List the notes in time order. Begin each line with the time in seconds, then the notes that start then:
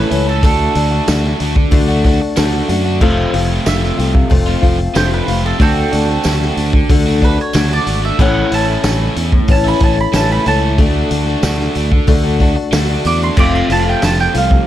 Already playing: A2 E3 A3 C#4 E4 A4 B4
0.10 C#2 E3 A3 C#4 E4 A4, open hi-hat
0.26 A3 C#4 A4
0.43 D2 D3 A3 D4 F#4 A4, kick, open hi-hat
0.75 D2 A3 D4 F#4, open hi-hat
0.91 A3 D4 F#4
1.07 D2 D3 A3 D4 F#4, snare, open hi-hat, tambourine
1.24 snare
1.40 D2 D3 A3 D4 F#4, open hi-hat
1.56 muted overdriven electric guitar stroke, kick
1.71 D2 D3 A3 D4 F#4, kick, open hi-hat
1.88 A3 D4 F#4
2.04 A3 D4 F#4, kick, snare, open hi-hat
2.21 muted overdriven electric guitar stroke
2.36 D2 D3 A3 D4 F#4, snare, open hi-hat, tambourine
2.69 F#2 D3 A3 D4 F#4, open hi-hat
2.85 A3 D4 F#4
3.00 F1 F2 C3 F3 A3 C4 F4 A4, kick, crash
3.33 F1 F3 A3 C4 F4, open hi-hat
3.50 F3 A3 C4 F4
3.66 F1 F2 C3 F3 A3 C4 F4 E5, snare, open hi-hat, tambourine
3.83 snare
3.98 C2 F3 A3 C4 F4, open hi-hat
4.14 muted overdriven electric guitar stroke, kick
4.30 F1 F2 C3 F3 A3 C4 F4, kick, open hi-hat
4.46 F3 A3 C4 F4
4.62 F1 F3 A3 C4 F4, kick, open hi-hat
4.79 muted overdriven electric guitar stroke
4.94 F1 F2 C3 F3 A3 C4 F4 C5, snare, open hi-hat, tambourine
5.13 B4
5.27 F1 F3 A3 C4 F4, open hi-hat
5.43 F3 A3 C4 F4 A4
5.58 D2 D3 A3 C4 D4 F#4 A4, kick, open hi-hat
5.91 D2 A3 D4 F#4, open hi-hat
6.08 A3 D4 F#4
6.24 D2 D3 A3 D4 F#4, snare, open hi-hat, tambourine
6.42 snare
6.57 D2 D3 A3 D4 F#4, open hi-hat
6.73 muted overdriven electric guitar stroke, kick
6.90 D2 D3 A3 D4 F#4, kick, open hi-hat
7.06 A3 D4 F#4
7.21 A3 D4 F#4 B4, kick, open hi-hat
7.38 C#5, muted overdriven electric guitar stroke
7.53 D2 D3 A3 D4 F#4, snare, open hi-hat, tambourine
7.73 D5
7.87 G#1 D3 A3 D4 F#4, open hi-hat
8.02 A3 D4 F#4 E5
8.18 A1 A2 E3 A3 C#4 E4 A4 F#5, kick, crash
8.51 A1 A3 C#4 E4 A5, open hi-hat
8.67 A3 C#4 E4
8.83 A1 A2 E3 A3 C#4 E4, snare, open hi-hat, tambourine
9.15 E2 E3 A3 C#4 E4, open hi-hat
9.32 muted overdriven electric guitar stroke, kick
9.48 A1 A2 E3 A3 C#4 E4 A5, kick, open hi-hat
9.64 A3 C#4 E4 B5
9.80 A1 A3 C#4 E4 A5, kick, open hi-hat
9.98 B5, muted overdriven electric guitar stroke
10.13 A1 A2 E3 A3 C#4 E4 A5, snare, open hi-hat, tambourine
10.32 B5
10.45 C#2 E3 A3 C#4 E4 A5, open hi-hat
10.49 E4
10.62 A3 C#4 E4
10.78 D2 D3 A3 D4 F#4 A4, kick, open hi-hat
11.10 D2 A3 D4 F#4, open hi-hat
11.27 A3 D4 F#4
11.42 D2 D3 A3 D4 F#4, snare, open hi-hat, tambourine
11.59 snare
11.75 D2 D3 A3 D4 F#4, open hi-hat
11.92 muted overdriven electric guitar stroke, kick
12.07 D2 D3 A3 D4 F#4, kick, open hi-hat
12.24 A3 D4 F#4
12.40 A3 D4 F#4, kick, open hi-hat
12.56 muted overdriven electric guitar stroke
12.71 D2 D3 A3 D4 F#4, snare, open hi-hat, tambourine
13.04 E2 D3 A3 D4 F#4 D6, open hi-hat
13.21 A3 D4 F#4 C6
13.37 F1 F2 C3 F3 A3 C4 F4 A4 D6, kick, crash
13.55 C6
13.70 F1 F3 A3 C4 F4 A5, open hi-hat
13.85 F3 A3 C4 F4 G5
14.02 F1 F2 C3 F3 A3 C4 F4 A5, snare, open hi-hat, tambourine
14.19 G5, snare
14.34 C2 F3 A3 C4 F4 F5, open hi-hat
14.51 muted overdriven electric guitar stroke, kick